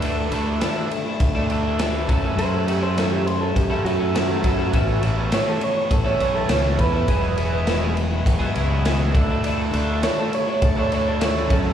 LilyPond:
<<
  \new Staff \with { instrumentName = "Clean electric guitar" } { \time 4/4 \key d \lydian \tempo 4 = 102 b'4 r2. | c''16 a'16 g'16 c''16 a'16 g'16 c''16 a'16 g'8 fis'4.~ | fis'8 r8 cis''16 a'16 cis''16 cis''16 a'16 cis''16 cis''16 a'16 cis''8 b'8~ | b'4. r2 r8 |
r4 cis''16 a'16 cis''16 cis''16 a'16 cis''16 cis''16 a'16 cis''8 a'8 | }
  \new Staff \with { instrumentName = "Overdriven electric guitar" } { \time 4/4 \key d \lydian <e a d' a'>16 <a d' a'>16 <e a d' a'>8 <e a d' a'>16 <a d' a'>8. r16 <a d' a'>16 <e a d' a'>8 <e a d' a'>16 <a d' a'>16 <fis a cis' a'>16 <a cis' a'>16 | <fis a cis' a'>16 <a cis' a'>16 <fis a cis' a'>8 <fis a cis' a'>16 <a cis' a'>8. r16 <a cis' a'>16 <fis a cis' a'>8 <fis a cis' a'>16 <a cis' a'>16 <fis a cis' a'>16 <a cis' a'>16 | <e a cis' a'>16 <a cis' a'>16 <e a cis' a'>8 <e a cis' a'>16 <a cis' a'>8. r16 <a cis' a'>16 <e a cis' a'>8 <e a cis' a'>16 <a cis' a'>16 <e a cis' a'>16 <a cis' a'>16 | <e b e' gis'>16 <b e' gis'>16 <e b e' gis'>8 <e b e' gis'>16 <b e' gis'>8. r16 <b e' gis'>16 <e b e' gis'>8 <e b e' gis'>16 <b e' gis'>16 <e a d' a'>16 <a d' a'>16 |
<e a d' a'>16 <a d' a'>16 <e a d' a'>8 <e a d' a'>16 <a d' a'>8. r16 <a d' a'>16 <e a d' a'>8 <e a d' a'>16 <a d' a'>16 <fis a cis' a'>16 <a cis' a'>16 | }
  \new Staff \with { instrumentName = "Clean electric guitar" } { \time 4/4 \key d \lydian <d a d' e'>8 <d a d' e'>16 <a d' e'>16 <d a d' e'>16 <a d' e'>8 <a d' e'>8 <a d' e'>16 <d a d' e'>16 <a d' e'>16 <d a d' e'>8 <fis a cis' e'>16 <a cis' e'>16 | <fis a cis' e'>8 <fis a cis' e'>16 <a cis' e'>16 <fis a cis' e'>16 <a cis' e'>8 <a cis' e'>8 <a cis' e'>16 <fis a cis' e'>16 <a cis' e'>16 <fis a cis' e'>8 <fis a cis' e'>16 <a cis' e'>16 | <a, e b cis' e'>8 <e b cis' e'>16 <b cis' e'>16 <a, e b cis' e'>16 <b cis' e'>8 <b cis' e'>8 <b cis' e'>16 <e b cis' e'>16 <b cis' e'>16 <a, e b cis' e'>8 <e b cis' e'>16 <b cis' e'>16 | <e, b, fis gis b e'>8 <fis gis b e'>16 <fis gis b e'>16 <e, b, fis gis b e'>16 <fis gis b e'>8 <fis gis b e'>8 <fis gis b e'>16 <fis gis b e'>16 <fis gis b e'>16 <e, b, fis gis b e'>8 <d a d' e'>16 <a d' e'>16 |
<d a d' e'>8 <d a d' e'>16 <a d' e'>16 <d a d' e'>16 <a d' e'>8 <a d' e'>8 <a d' e'>16 <d a d' e'>16 <a d' e'>16 <d a d' e'>8 <fis, cis e a cis' fis'>16 <e a cis' fis'>16 | }
  \new Staff \with { instrumentName = "Fingered electric bass" } { \clef bass \time 4/4 \key d \lydian d,8 d,8 r4 d,4. fis,8 | fis,2 fis,16 r16 fis,4 fis,8 | a,,8 a,,8 r4 a,,8 b,,8 cis,8 e,8 | e,,2 e,,16 r16 cis,4 d,8~ |
d,8 d,8 r4 d,4. fis,8 | }
  \new DrumStaff \with { instrumentName = "Drums" } \drummode { \time 4/4 cymr8 cymr8 <cymr sn>8 cymr8 <bd cymr>8 cymr8 <cymr sn>8 <bd cymr>8 | cymr8 cymr8 <cymr sn>8 cymr8 <bd cymr>8 cymr8 <cymr sn>8 <bd cymr>8 | <bd cymr>8 cymr8 <cymr sn>8 cymr8 <bd cymr>8 cymr8 <cymr sn>8 <bd cymr>8 | <bd cymr>8 cymr8 <cymr sn>8 cymr8 <bd cymr>8 cymr8 <cymr sn>8 <bd cymr>8 |
cymr8 cymr8 <cymr sn>8 cymr8 <bd cymr>8 cymr8 <cymr sn>8 <bd cymr>8 | }
>>